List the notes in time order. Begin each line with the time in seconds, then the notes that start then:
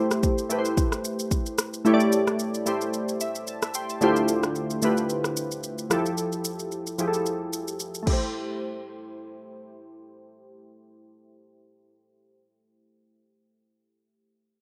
Already playing: A3 E4 G4 C5
0.11 cross-stick, shaker
0.23 kick, shaker
0.38 shaker
0.49 A3 E4 G4 B4, shaker
0.59 C5
0.65 shaker
0.77 kick, shaker
0.92 cross-stick, shaker
1.05 shaker
1.19 shaker
1.31 kick, shaker
1.46 shaker
1.58 cross-stick, shaker
1.74 shaker
1.85 A3 E4 G4 C#5, shaker
1.94 D5
2.00 shaker
2.12 shaker
2.27 cross-stick, shaker
2.39 shaker
2.54 shaker
2.66 A3 E4 G4 C5, shaker
2.81 shaker
2.94 shaker
3.08 shaker
3.21 E5, shaker
3.35 shaker
3.47 A5, shaker
3.62 E5, cross-stick, shaker
3.74 G5 C6, shaker
3.89 A5, shaker
4.01 D3 A3 E4 F4 G4 C5, shaker
4.16 shaker
4.28 shaker
4.43 cross-stick, shaker
4.55 shaker
4.70 shaker
4.82 D3 A3 E4 F4 G4 B4, shaker
4.97 shaker
5.10 shaker
5.24 cross-stick, shaker
5.37 shaker
5.51 shaker
5.63 shaker
5.78 shaker
5.90 F3 E4 G4 A4, cross-stick, shaker
6.06 shaker
6.18 shaker
6.32 shaker
6.45 shaker
6.59 shaker
6.72 shaker
6.87 shaker
6.98 F3 E4 G4 G#4, shaker
7.08 A4
7.14 shaker
7.26 shaker
7.53 shaker
7.68 shaker
7.80 shaker
7.95 shaker
8.03 A3 E4
8.07 G4, kick, crash
8.13 C5